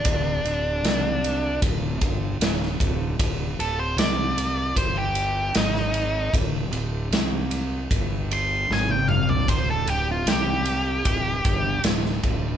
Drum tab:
RD |x-x-x-x-x-x-x-x-|x-x-x-x-x-x-x-x-|x-x-x-x-x-x-----|x-x-x-x-x-x-x-x-|
SD |----o-------oo--|----o-------oo--|----o-------o---|----o-------oo--|
T1 |----------------|----------------|-------------o--|----------------|
T2 |----------------|----------------|--------------o-|----------------|
FT |----------------|----------------|---------------o|----------------|
BD |o-------o-o---o-|o-------o-------|o-------o-------|o-------o-o---o-|